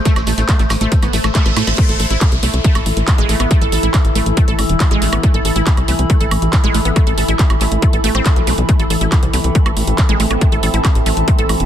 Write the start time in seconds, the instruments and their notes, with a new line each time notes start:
Already playing: synth drone A3 C5, ambient pad B5
0.05 synth arpeggio sound A3, kick, closed hi-hat, shekere
0.16 analog synth bass A1, closed hi-hat, high woodblock, shekere
0.27 analog synth bass A1, synth arpeggio sound A3, open hi-hat, shekere
0.38 analog synth bass A1, synth arpeggio sound A3, closed hi-hat, shekere
0.49 synth arpeggio sound A3, kick, clap, closed hi-hat, high woodblock, shekere
0.59 analog synth bass A1, synth arpeggio sound A3, closed hi-hat, shekere
0.70 analog synth bass A1, clap, open hi-hat, high woodblock, shekere
0.81 analog synth bass A1, synth arpeggio sound A3, closed hi-hat, shekere
0.92 kick, closed hi-hat, reverse cymbal, shekere
1.02 analog synth bass A1, synth arpeggio sound B3, closed hi-hat, high woodblock, shekere
1.13 analog synth bass A1, synth arpeggio sound A3, open hi-hat, shekere
1.24 analog synth bass A1, synth arpeggio sound A3, closed hi-hat, high woodblock, shekere
1.35 synth arpeggio sound A3, kick, snare, clap, closed hi-hat, shekere
1.45 analog synth bass A1, synth arpeggio sound A3, snare, closed hi-hat, shekere
1.56 analog synth bass A2, synth arpeggio sound A3, snare, open hi-hat, high woodblock, shekere
1.67 analog synth bass A1, snare, closed hi-hat, shekere
1.78 synth drone E3 E4, synth arpeggio sound A3, ambient pad A4, kick, closed hi-hat, crash, downlifter
1.89 analog synth bass A1, synth arpeggio sound A4, closed hi-hat
2.00 analog synth bass A1, synth arpeggio sound A4, open hi-hat
2.10 analog synth bass A1, synth arpeggio sound E4, closed hi-hat
2.21 kick, clap, closed hi-hat, high woodblock
2.31 analog synth bass C2, ambient pad E5, closed hi-hat
2.43 analog synth bass C2, synth arpeggio sound A3, open hi-hat
2.47 ambient pad B5
2.54 analog synth bass C2, closed hi-hat
2.64 synth arpeggio sound A3, kick, closed hi-hat
2.75 analog synth bass A1, synth arpeggio sound A4, closed hi-hat, high woodblock
2.86 analog synth bass A1, open hi-hat
2.97 analog synth bass A1, closed hi-hat
3.08 kick, clap, closed hi-hat
3.18 analog synth bass A1, synth arpeggio sound G#3, closed hi-hat
3.29 analog synth bass A1, synth arpeggio sound A3, open hi-hat
3.40 analog synth bass A1, synth arpeggio sound B3, closed hi-hat, high woodblock
3.51 synth arpeggio sound A3, kick, closed hi-hat
3.61 analog synth bass A1, synth arpeggio sound A4, closed hi-hat
3.72 analog synth bass A1, synth arpeggio sound A4, open hi-hat
3.83 analog synth bass A1, synth arpeggio sound E4, closed hi-hat
3.94 kick, clap, closed hi-hat, high woodblock
4.05 analog synth bass A1, closed hi-hat
4.15 analog synth bass A1, synth arpeggio sound A3, open hi-hat
4.26 analog synth bass A1, closed hi-hat
4.37 synth arpeggio sound A3, kick, closed hi-hat
4.48 analog synth bass A1, synth arpeggio sound A4, closed hi-hat
4.59 analog synth bass A1, open hi-hat, high woodblock
4.69 analog synth bass E1, closed hi-hat
4.80 kick, clap, closed hi-hat
4.91 analog synth bass A1, synth arpeggio sound G#3, closed hi-hat
5.02 analog synth bass A1, synth arpeggio sound A3, open hi-hat
5.13 analog synth bass A1, synth arpeggio sound B3, closed hi-hat, high woodblock
5.23 synth arpeggio sound A3, kick, closed hi-hat
5.34 analog synth bass A1, synth arpeggio sound A4, closed hi-hat
5.45 analog synth bass A1, synth arpeggio sound A4, open hi-hat
5.56 analog synth bass A1, synth arpeggio sound E4, closed hi-hat
5.67 kick, clap, closed hi-hat
5.77 analog synth bass C2, closed hi-hat, high woodblock
5.88 analog synth bass C2, synth arpeggio sound A3, open hi-hat
5.99 analog synth bass C2, closed hi-hat
6.10 synth arpeggio sound A3, kick, closed hi-hat
6.21 analog synth bass A1, synth arpeggio sound A4, closed hi-hat
6.31 analog synth bass A1, open hi-hat, high woodblock
6.42 analog synth bass A1, closed hi-hat
6.53 kick, clap, closed hi-hat
6.64 analog synth bass A1, synth arpeggio sound G#3, closed hi-hat
6.74 analog synth bass A1, synth arpeggio sound A3, open hi-hat
6.85 analog synth bass A1, synth arpeggio sound B3, closed hi-hat
6.96 synth arpeggio sound A3, kick, closed hi-hat, high woodblock
7.07 analog synth bass A1, synth arpeggio sound A4, closed hi-hat
7.18 analog synth bass A1, synth arpeggio sound A4, open hi-hat
7.28 analog synth bass A1, synth arpeggio sound E4, closed hi-hat
7.39 kick, clap, closed hi-hat
7.50 analog synth bass A1, closed hi-hat, high woodblock
7.61 analog synth bass A1, synth arpeggio sound A3, clap, open hi-hat
7.72 analog synth bass A1, closed hi-hat
7.82 synth arpeggio sound A3, kick, closed hi-hat
7.93 analog synth bass A1, synth arpeggio sound A4, closed hi-hat
8.04 analog synth bass A1, synth arpeggio sound A3, open hi-hat
8.15 analog synth bass A1, synth arpeggio sound C4, closed hi-hat, high woodblock
8.26 synth arpeggio sound A4, kick, clap, closed hi-hat
8.36 analog synth bass B1, closed hi-hat
8.47 analog synth bass B1, synth arpeggio sound A3, open hi-hat
8.58 analog synth bass B1, closed hi-hat
8.69 synth arpeggio sound A3, synth drone C4, kick, closed hi-hat
8.79 analog synth bass A1, synth arpeggio sound A4, closed hi-hat
8.90 analog synth bass A1, synth arpeggio sound A4, open hi-hat
9.01 analog synth bass A1, synth arpeggio sound E4, closed hi-hat
9.12 kick, clap, closed hi-hat, high woodblock
9.23 analog synth bass C2, closed hi-hat
9.33 analog synth bass C2, synth arpeggio sound A3, open hi-hat
9.38 ambient pad A5
9.44 analog synth bass C2, closed hi-hat
9.55 synth arpeggio sound A3, kick, closed hi-hat
9.66 analog synth bass A1, synth arpeggio sound A4, closed hi-hat, high woodblock
9.77 analog synth bass A1, open hi-hat
9.87 analog synth bass A1, closed hi-hat
9.98 kick, clap, closed hi-hat
10.09 analog synth bass A1, synth arpeggio sound G#3, closed hi-hat
10.20 analog synth bass A1, synth arpeggio sound A3, open hi-hat
10.31 analog synth bass A1, synth arpeggio sound B3, closed hi-hat, high woodblock
10.41 synth arpeggio sound A3, kick, closed hi-hat
10.52 analog synth bass A1, synth arpeggio sound A4, closed hi-hat
10.63 analog synth bass A1, synth arpeggio sound A4, open hi-hat
10.74 analog synth bass A1, synth arpeggio sound E4, closed hi-hat
10.85 kick, clap, closed hi-hat, high woodblock
10.95 analog synth bass A1, closed hi-hat
11.06 analog synth bass A1, synth arpeggio sound A3, open hi-hat
11.17 analog synth bass A1, closed hi-hat
11.28 synth arpeggio sound A3, kick, closed hi-hat
11.38 analog synth bass A1, synth arpeggio sound A4, closed hi-hat
11.49 analog synth bass A1, open hi-hat, high woodblock
11.60 analog synth bass E1, closed hi-hat